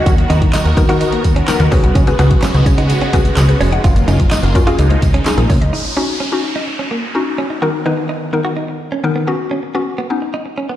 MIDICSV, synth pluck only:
0, 0, Header, 1, 2, 480
1, 0, Start_track
1, 0, Tempo, 472441
1, 65, Time_signature, 4, 2, 24, 8
1, 10936, End_track
2, 0, Start_track
2, 0, Title_t, "Synth pluck"
2, 0, Program_c, 0, 84
2, 782, Note_on_c, 0, 59, 91
2, 784, Note_on_c, 0, 63, 80
2, 786, Note_on_c, 0, 66, 78
2, 787, Note_on_c, 0, 70, 98
2, 854, Note_off_c, 0, 59, 0
2, 855, Note_off_c, 0, 63, 0
2, 856, Note_off_c, 0, 66, 0
2, 857, Note_off_c, 0, 70, 0
2, 903, Note_on_c, 0, 59, 92
2, 905, Note_on_c, 0, 63, 87
2, 906, Note_on_c, 0, 66, 88
2, 908, Note_on_c, 0, 70, 106
2, 1256, Note_off_c, 0, 59, 0
2, 1257, Note_off_c, 0, 63, 0
2, 1258, Note_off_c, 0, 66, 0
2, 1259, Note_off_c, 0, 70, 0
2, 1502, Note_on_c, 0, 59, 87
2, 1504, Note_on_c, 0, 63, 77
2, 1505, Note_on_c, 0, 66, 74
2, 1507, Note_on_c, 0, 70, 97
2, 1731, Note_off_c, 0, 66, 0
2, 1741, Note_on_c, 0, 61, 91
2, 1743, Note_off_c, 0, 59, 0
2, 1743, Note_on_c, 0, 66, 86
2, 1744, Note_off_c, 0, 63, 0
2, 1745, Note_on_c, 0, 68, 83
2, 1746, Note_off_c, 0, 70, 0
2, 1747, Note_on_c, 0, 71, 97
2, 2031, Note_off_c, 0, 61, 0
2, 2032, Note_off_c, 0, 66, 0
2, 2033, Note_off_c, 0, 68, 0
2, 2034, Note_off_c, 0, 71, 0
2, 2103, Note_on_c, 0, 61, 87
2, 2105, Note_on_c, 0, 66, 77
2, 2107, Note_on_c, 0, 68, 80
2, 2108, Note_on_c, 0, 71, 98
2, 2174, Note_off_c, 0, 61, 0
2, 2175, Note_off_c, 0, 66, 0
2, 2176, Note_off_c, 0, 68, 0
2, 2177, Note_off_c, 0, 71, 0
2, 2222, Note_on_c, 0, 61, 89
2, 2224, Note_on_c, 0, 66, 82
2, 2226, Note_on_c, 0, 68, 81
2, 2228, Note_on_c, 0, 71, 100
2, 2788, Note_off_c, 0, 61, 0
2, 2788, Note_off_c, 0, 66, 0
2, 2789, Note_off_c, 0, 68, 0
2, 2790, Note_off_c, 0, 71, 0
2, 3181, Note_on_c, 0, 61, 98
2, 3183, Note_on_c, 0, 66, 89
2, 3185, Note_on_c, 0, 68, 88
2, 3187, Note_on_c, 0, 71, 102
2, 3747, Note_off_c, 0, 61, 0
2, 3748, Note_off_c, 0, 66, 0
2, 3749, Note_off_c, 0, 68, 0
2, 3750, Note_off_c, 0, 71, 0
2, 4622, Note_on_c, 0, 61, 91
2, 4624, Note_on_c, 0, 65, 83
2, 4625, Note_on_c, 0, 66, 82
2, 4627, Note_on_c, 0, 70, 100
2, 4694, Note_off_c, 0, 61, 0
2, 4695, Note_off_c, 0, 65, 0
2, 4696, Note_off_c, 0, 66, 0
2, 4696, Note_off_c, 0, 70, 0
2, 4742, Note_on_c, 0, 61, 96
2, 4744, Note_on_c, 0, 65, 88
2, 4745, Note_on_c, 0, 66, 86
2, 4747, Note_on_c, 0, 68, 104
2, 4863, Note_off_c, 0, 61, 0
2, 4864, Note_off_c, 0, 65, 0
2, 4865, Note_off_c, 0, 66, 0
2, 4866, Note_off_c, 0, 68, 0
2, 5343, Note_on_c, 0, 61, 83
2, 5344, Note_on_c, 0, 63, 77
2, 5346, Note_on_c, 0, 65, 74
2, 5348, Note_on_c, 0, 68, 89
2, 5626, Note_off_c, 0, 61, 0
2, 5627, Note_off_c, 0, 63, 0
2, 5627, Note_off_c, 0, 65, 0
2, 5628, Note_off_c, 0, 68, 0
2, 6061, Note_on_c, 0, 61, 78
2, 6063, Note_on_c, 0, 63, 77
2, 6066, Note_on_c, 0, 66, 86
2, 6275, Note_off_c, 0, 61, 0
2, 6276, Note_off_c, 0, 63, 0
2, 6277, Note_off_c, 0, 66, 0
2, 6421, Note_on_c, 0, 61, 79
2, 6424, Note_on_c, 0, 63, 72
2, 6426, Note_on_c, 0, 66, 89
2, 6916, Note_off_c, 0, 61, 0
2, 6918, Note_off_c, 0, 63, 0
2, 6919, Note_off_c, 0, 66, 0
2, 7262, Note_on_c, 0, 61, 86
2, 7265, Note_on_c, 0, 63, 81
2, 7267, Note_on_c, 0, 66, 96
2, 7546, Note_off_c, 0, 61, 0
2, 7547, Note_off_c, 0, 63, 0
2, 7548, Note_off_c, 0, 66, 0
2, 7742, Note_on_c, 0, 51, 88
2, 7744, Note_on_c, 0, 59, 83
2, 7745, Note_on_c, 0, 63, 80
2, 7747, Note_on_c, 0, 70, 97
2, 7885, Note_off_c, 0, 51, 0
2, 7885, Note_off_c, 0, 59, 0
2, 7886, Note_off_c, 0, 63, 0
2, 7887, Note_off_c, 0, 70, 0
2, 7982, Note_on_c, 0, 51, 84
2, 7983, Note_on_c, 0, 59, 83
2, 7985, Note_on_c, 0, 63, 81
2, 7986, Note_on_c, 0, 71, 98
2, 8265, Note_off_c, 0, 51, 0
2, 8266, Note_off_c, 0, 59, 0
2, 8267, Note_off_c, 0, 63, 0
2, 8267, Note_off_c, 0, 71, 0
2, 8462, Note_on_c, 0, 51, 89
2, 8463, Note_on_c, 0, 59, 77
2, 8465, Note_on_c, 0, 63, 76
2, 8467, Note_on_c, 0, 70, 95
2, 8886, Note_off_c, 0, 51, 0
2, 8887, Note_off_c, 0, 59, 0
2, 8888, Note_off_c, 0, 63, 0
2, 8889, Note_off_c, 0, 70, 0
2, 9180, Note_on_c, 0, 51, 85
2, 9182, Note_on_c, 0, 59, 80
2, 9184, Note_on_c, 0, 63, 85
2, 9185, Note_on_c, 0, 70, 104
2, 9409, Note_off_c, 0, 59, 0
2, 9421, Note_on_c, 0, 59, 82
2, 9422, Note_off_c, 0, 51, 0
2, 9424, Note_on_c, 0, 61, 81
2, 9425, Note_off_c, 0, 63, 0
2, 9425, Note_off_c, 0, 70, 0
2, 9427, Note_on_c, 0, 66, 95
2, 9807, Note_off_c, 0, 59, 0
2, 9808, Note_off_c, 0, 61, 0
2, 9810, Note_off_c, 0, 66, 0
2, 9901, Note_on_c, 0, 59, 80
2, 9904, Note_on_c, 0, 61, 76
2, 9907, Note_on_c, 0, 66, 92
2, 10114, Note_off_c, 0, 59, 0
2, 10116, Note_off_c, 0, 61, 0
2, 10117, Note_off_c, 0, 66, 0
2, 10262, Note_on_c, 0, 59, 79
2, 10264, Note_on_c, 0, 61, 73
2, 10267, Note_on_c, 0, 63, 88
2, 10757, Note_off_c, 0, 59, 0
2, 10758, Note_off_c, 0, 61, 0
2, 10759, Note_off_c, 0, 63, 0
2, 10936, End_track
0, 0, End_of_file